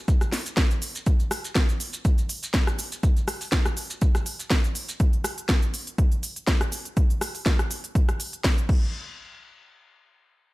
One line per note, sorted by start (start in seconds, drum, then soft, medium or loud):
0.08 kick loud
0.08 closed hi-hat medium
0.08 maracas medium
0.08 shaker soft
0.21 cross-stick medium
0.21 closed hi-hat soft
0.21 maracas soft
0.21 shaker soft
0.32 snare medium
0.32 open hi-hat loud
0.32 shaker medium
0.46 closed hi-hat soft
0.46 maracas medium
0.46 shaker soft
0.57 kick loud
0.57 snare loud
0.57 open hi-hat medium
0.57 shaker soft
0.57 maracas medium
0.70 closed hi-hat soft
0.70 shaker soft
0.70 maracas soft
0.82 open hi-hat loud
0.82 shaker medium
0.95 closed hi-hat soft
0.95 shaker soft
0.95 maracas medium
1.06 kick loud
1.06 closed hi-hat medium
1.06 maracas medium
1.06 shaker soft
1.20 closed hi-hat soft
1.20 maracas soft
1.31 cross-stick medium
1.31 open hi-hat loud
1.31 shaker medium
1.44 closed hi-hat soft
1.44 shaker soft
1.44 maracas medium
1.55 kick loud
1.55 snare loud
1.55 closed hi-hat medium
1.55 maracas medium
1.55 shaker soft
1.69 closed hi-hat soft
1.69 shaker soft
1.69 maracas soft
1.80 open hi-hat loud
1.80 shaker medium
1.93 closed hi-hat soft
1.93 maracas medium
1.93 shaker soft
2.05 kick loud
2.05 closed hi-hat medium
2.05 maracas medium
2.05 shaker soft
2.18 closed hi-hat soft
2.18 maracas soft
2.18 shaker soft
2.29 open hi-hat loud
2.29 shaker medium
2.43 closed hi-hat soft
2.43 shaker soft
2.43 maracas medium
2.54 kick loud
2.54 snare loud
2.54 closed hi-hat medium
2.54 maracas medium
2.54 shaker soft
2.67 cross-stick medium
2.67 closed hi-hat soft
2.67 shaker soft
2.67 maracas soft
2.79 open hi-hat loud
2.79 shaker medium
2.92 closed hi-hat soft
2.92 maracas medium
2.92 shaker soft
3.03 kick loud
3.03 closed hi-hat medium
3.03 maracas medium
3.03 shaker soft
3.16 closed hi-hat soft
3.16 maracas soft
3.28 cross-stick medium
3.28 open hi-hat loud
3.28 shaker medium
3.41 open hi-hat medium
3.41 maracas medium
3.41 shaker soft
3.52 kick loud
3.52 snare loud
3.52 closed hi-hat medium
3.52 maracas medium
3.52 shaker soft
3.66 cross-stick medium
3.66 closed hi-hat soft
3.66 maracas soft
3.66 shaker soft
3.77 open hi-hat loud
3.77 shaker medium
3.90 closed hi-hat soft
3.90 maracas medium
3.90 shaker soft
4.01 kick loud
4.01 closed hi-hat medium
4.01 maracas medium
4.01 shaker soft
4.15 cross-stick medium
4.15 closed hi-hat soft
4.15 shaker soft
4.15 maracas soft
4.26 open hi-hat loud
4.26 shaker medium
4.39 closed hi-hat soft
4.39 shaker soft
4.39 maracas medium
4.50 kick loud
4.50 snare loud
4.50 open hi-hat medium
4.50 maracas medium
4.50 shaker soft
4.64 closed hi-hat soft
4.64 shaker soft
4.64 maracas soft
4.75 open hi-hat loud
4.75 shaker medium
4.89 closed hi-hat soft
4.89 maracas medium
4.89 shaker soft
5.00 kick loud
5.00 closed hi-hat medium
5.00 shaker soft
5.13 closed hi-hat soft
5.24 cross-stick medium
5.24 open hi-hat loud
5.24 shaker medium
5.38 closed hi-hat soft
5.38 shaker soft
5.49 kick loud
5.49 snare loud
5.49 closed hi-hat medium
5.49 shaker soft
5.62 closed hi-hat soft
5.62 shaker soft
5.74 open hi-hat loud
5.74 shaker medium
5.87 closed hi-hat soft
5.87 shaker soft
5.98 kick loud
5.98 closed hi-hat medium
5.98 shaker soft
6.12 closed hi-hat soft
6.12 shaker soft
6.23 open hi-hat loud
6.23 shaker medium
6.36 closed hi-hat soft
6.36 shaker soft
6.47 kick loud
6.47 snare loud
6.47 closed hi-hat medium
6.47 shaker soft
6.61 cross-stick medium
6.61 closed hi-hat soft
6.61 shaker soft
6.72 open hi-hat loud
6.72 shaker medium
6.85 closed hi-hat soft
6.85 shaker soft
6.97 kick loud
6.97 closed hi-hat medium
6.97 shaker soft
7.10 closed hi-hat soft
7.10 shaker soft
7.21 cross-stick medium
7.21 open hi-hat loud
7.21 shaker medium
7.35 open hi-hat medium
7.35 shaker soft
7.46 kick loud
7.46 snare loud
7.46 closed hi-hat medium
7.46 shaker soft
7.59 cross-stick medium
7.59 closed hi-hat soft
7.59 shaker soft
7.71 open hi-hat loud
7.71 shaker medium
7.84 closed hi-hat soft
7.84 shaker soft
7.95 kick loud
7.95 closed hi-hat medium
7.95 shaker soft
8.09 cross-stick medium
8.09 closed hi-hat soft
8.09 shaker soft
8.20 open hi-hat loud
8.20 shaker medium
8.33 closed hi-hat soft
8.33 shaker soft
8.44 kick loud
8.44 snare loud
8.44 open hi-hat medium
8.44 shaker soft
8.58 closed hi-hat soft
8.58 shaker soft
8.69 kick loud
8.69 crash medium